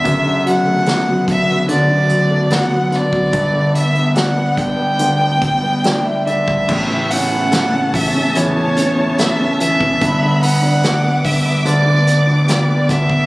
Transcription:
Already playing: D3 E5
0.04 F#1 F#2 F#3 B3, kick, closed hi-hat
0.25 D3
0.46 F#3 F#5, closed hi-hat
0.66 A3
0.86 B3, snare, closed hi-hat
1.08 F#3
1.27 D3 E5, kick, closed hi-hat
1.49 F#3
1.69 D2 D3 D5, closed hi-hat
1.90 D3
2.09 F#3, closed hi-hat
2.30 A3
2.50 B3 F#5, snare, closed hi-hat
2.70 F#3
2.91 D3, snare, closed hi-hat
2.96 D5
3.12 F#3, kick
3.33 G1 G2 B3, kick, closed hi-hat
3.54 D3
3.74 G3 E5, closed hi-hat
3.94 B3, closed hi-hat
4.16 D4 F#5, snare, closed hi-hat
4.36 G3
4.57 D3 G5, kick, closed hi-hat
4.78 G3
4.99 D2 D3, closed hi-hat
5.21 D3
5.41 G3, kick, closed hi-hat
5.63 B3
5.84 D4 G5, snare, closed hi-hat
6.05 G3 E5
6.27 D3 D5 E5, closed hi-hat
6.48 G3, kick
6.67 A1 A2 C#3 A3 B3 A5, kick, crash
6.90 E3
7.10 C#4 F#5, hi-hat pedal, open hi-hat
7.32 E4
7.52 A4, snare, hi-hat pedal, open hi-hat
7.73 C#4
7.94 E3 E5, kick, hi-hat pedal, open hi-hat
8.15 C#4
8.35 E2 E3 C#5, hi-hat pedal, open hi-hat
8.57 E3
8.77 C#4, hi-hat pedal, open hi-hat
8.98 E4
9.18 A4 E5, snare, hi-hat pedal, open hi-hat
9.40 C#4
9.60 E3 E5, hi-hat pedal, open hi-hat
9.81 C#4, kick
10.01 G1 G2 D3 B5, kick, hi-hat pedal, open hi-hat
10.23 D3
10.43 B3 F#5, hi-hat pedal, open hi-hat
10.62 D4
10.83 G4 D6, snare, hi-hat pedal, open hi-hat
11.04 B3
11.25 D3 E5, kick, hi-hat pedal, open hi-hat
11.46 B3
11.65 D2 D3 D5, hi-hat pedal, open hi-hat
11.86 D3
12.07 B3, hi-hat pedal, open hi-hat
12.27 D4
12.47 G4 D5, snare, hi-hat pedal, open hi-hat
12.68 B3
12.89 D3 E5, kick, snare, hi-hat pedal, open hi-hat
13.09 B3, kick

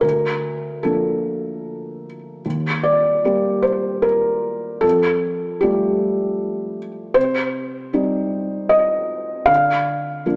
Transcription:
0.01 D2 A#4
0.83 F3 A#3 D4 A4
2.46 D#2
2.83 D5
3.24 G3 A#3 G4
3.62 C5
4.02 A#4
4.81 F2 A4
5.61 G3 A3 F4 G4
7.14 C3 C5
7.93 G3 C4 D#4
8.69 D#5
9.46 D3 F5
10.26 F3 A#3 D4

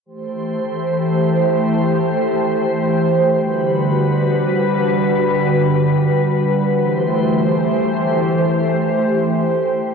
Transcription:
0.06 E3 A3 G4 C5
3.37 D3 G3 F#4 B4
6.68 E3 A3 G4 C5

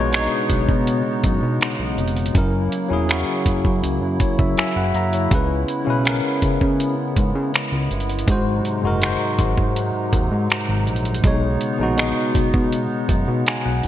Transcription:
Already playing: A#1 B2 C#3 G#3 B3 D#4 C#5
0.11 B2 G#3 D4, finger snap, closed hi-hat
0.16 C#5
0.21 D#4
0.50 B1, kick, closed hi-hat
0.69 B2, kick
0.87 closed hi-hat
1.24 F#2, kick, closed hi-hat
1.42 B2
1.61 finger snap, closed hi-hat
1.79 B1
1.98 F1, closed hi-hat
2.08 closed hi-hat
2.17 closed hi-hat
2.26 closed hi-hat
2.33 F#1 F#3 A#3 C#4 E4, kick, closed hi-hat
2.38 A#4
2.72 closed hi-hat
2.88 E1 F#3 C#4 E4
2.93 G#4
3.08 F#3 C#4 E4, finger snap, closed hi-hat
3.12 F#4
3.46 F#1, kick, closed hi-hat
3.65 F#2, kick
3.83 C#2, closed hi-hat
4.01 F#2
4.20 C#5, kick, closed hi-hat
4.39 F#1 E5, kick
4.58 F#1 E5 G#5, finger snap, closed hi-hat
4.76 F#1 F#5
4.94 F#2 E5 A#5, closed hi-hat
5.13 C#5, closed hi-hat
5.30 C#2 C#3 G#3 B3 C#4 E4, kick, closed hi-hat
5.35 B4
5.68 closed hi-hat
5.85 B1 C#3 C#4 E4
5.90 B4
6.04 C#3 C#4 E4, finger snap, closed hi-hat
6.09 A#4
6.42 C#2, kick, closed hi-hat
6.61 C#3, kick
6.80 closed hi-hat
7.17 G#2, kick, closed hi-hat
7.35 C#3
7.54 finger snap, closed hi-hat
7.72 C#2
7.91 G1, closed hi-hat
8.00 closed hi-hat
8.09 closed hi-hat
8.19 closed hi-hat
8.27 G#1 G#2 C3 F#3 G#3 D#4 F#4, kick, closed hi-hat
8.32 C5
8.65 closed hi-hat
8.82 F#1 G#2 G#3 F#4
8.87 A#4
9.01 G#2 G#3 F#4, finger snap, closed hi-hat
9.06 C5
9.39 G#1, kick, closed hi-hat
9.58 G#2, kick
9.76 closed hi-hat
10.13 D#2, kick, closed hi-hat
10.32 G#2
10.50 finger snap, closed hi-hat
10.69 G#1
10.87 A#1, closed hi-hat
10.96 closed hi-hat
11.05 closed hi-hat
11.14 closed hi-hat
11.22 B1 B2 C#3 G#3 B3 D#4, kick, closed hi-hat
11.27 C#5
11.61 closed hi-hat
11.78 A#1 B2 G#3 D#4
11.83 F#4
11.97 B2 G#3 D#4, finger snap, closed hi-hat
12.01 D#5
12.35 B1, kick, closed hi-hat
12.54 B2, kick
12.73 closed hi-hat
13.09 F#2, kick, closed hi-hat
13.28 B2
13.47 G#5, finger snap, closed hi-hat
13.65 B1 F#5
13.83 F1, closed hi-hat

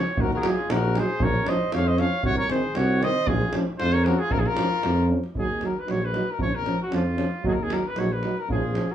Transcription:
Already playing: C#5
0.07 davul high
0.17 D#2 F#4 A#4, davul low
0.32 F4 F#4 A#4, davul high
0.36 F#4 G#4 A#4
0.43 F#3 D#4 F4 G#4, davul high
0.58 davul high
0.70 A#1 F#4 A#4, davul high
0.83 davul high
0.95 F#3 D#4 G#4 C5, davul high
1.10 davul high
1.20 A#1 A#4 C#5, davul low
1.35 davul high
1.45 F3 C#4 C5 D#5, davul high
1.72 F2 C#5 F5, davul high
1.86 C5 D#5
1.98 F3 C#4 C#5 F5, davul high
2.12 davul high
2.23 C2 F#4 C#5, davul low
2.37 A#4 C#5, davul high
2.49 D#3 C4 G#4 C5, davul high
2.75 C2 F#4 C#5, davul high
3.02 D#3 C4 C5 D#5, davul high
3.16 davul high
3.27 A#1 F4 G#4, davul low
3.41 davul high
3.53 F3 C#4, davul high
3.78 F2 F4 C5, davul high
3.93 A#4 C#5
4.05 F3 C#4 F#4 A#4, davul high
4.18 F4 G#4, davul high
4.31 A#1 F4 A#4, davul low
4.39 F4 G#4
4.46 F4 A#4, davul high
4.56 F3 C#4, davul high
4.83 F2, davul high
4.98 davul high
5.09 F3 C#4
5.24 davul high
5.34 D#2 F#3 D#4, davul low
5.39 G#4
5.59 F#3 D#4, davul high
5.66 A#4
5.79 B4
5.85 F#3 D#4, davul high
5.89 A#1 C#5
6.05 B4
6.13 F#3 D#4, davul high
6.27 A#4, davul high
6.39 A#1 F3 C#4 C#5, davul low
6.55 A#4
6.65 F3 C#4, davul high
6.82 F#4
6.91 F2 F3 C#4 F4, davul high
7.16 F3 C#4, davul high
7.32 davul high
7.43 D#2 F#3 D#4 G#4, davul low
7.53 A#4
7.63 G#4
7.69 F#3 D#4 A#4, davul high
7.87 B4
7.96 A#1 F#3 D#4 C#5, davul high
8.12 B4
8.23 F#3 D#4, davul high
8.37 A#4, davul high
8.49 A#1 F3 C#4 F4 G#4, davul low
8.63 davul high
8.75 F3 C#4, davul high
8.90 F#4 A#4, davul high

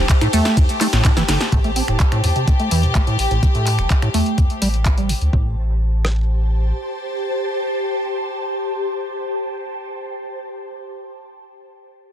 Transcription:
Already playing: G4 C5 A5
0.09 kick, clap, closed hi-hat, ride, shaker
0.21 A2, finger snap, closed hi-hat, high conga, shaker
0.33 E2 A3, open hi-hat, ride, shaker
0.45 snare, closed hi-hat, shaker
0.57 E2 D3, kick, closed hi-hat, ride, high conga, shaker
0.69 closed hi-hat, shaker
0.81 A3, clap, open hi-hat, ride, high conga, shaker
0.93 A1 A2, snare, closed hi-hat, shaker
1.05 A2, kick, snare, clap, closed hi-hat, ride, high conga, shaker
1.17 G1 E3, snare, closed hi-hat, shaker
1.28 G1 D3, snare, open hi-hat, ride, high conga, shaker
1.41 snare, closed hi-hat, shaker
1.52 A1 A2 G4, kick, closed hi-hat
1.64 A3, closed hi-hat
1.76 C4, open hi-hat
1.88 E1 A2, finger snap, closed hi-hat
2.00 kick, clap, closed hi-hat
2.12 A2, finger snap, closed hi-hat
2.24 E2 A2, open hi-hat
2.36 C3, closed hi-hat
2.48 A2, kick, closed hi-hat
2.60 A3, closed hi-hat
2.71 E2 E3, open hi-hat
2.83 A#2, closed hi-hat
2.95 A1 A3, kick, clap, closed hi-hat
3.07 A2, closed hi-hat
3.19 A1, open hi-hat
3.31 A1 A2, closed hi-hat
3.43 A3, kick, closed hi-hat
3.55 A2, closed hi-hat
3.67 clap, open hi-hat
3.79 E1 A1, finger snap, closed hi-hat
3.90 kick, clap, closed hi-hat
4.02 A2, finger snap, closed hi-hat
4.14 E2 A3, open hi-hat
4.26 closed hi-hat
4.38 E2 D3, kick, closed hi-hat
4.50 closed hi-hat
4.62 A1 G3, open hi-hat
4.74 closed hi-hat
4.86 A1, kick, clap, closed hi-hat
4.98 G3, closed hi-hat
5.09 A2, open hi-hat
5.21 D2, closed hi-hat
5.33 A1 A2 G4, kick
5.41 C5
5.48 A5
6.05 cross-stick

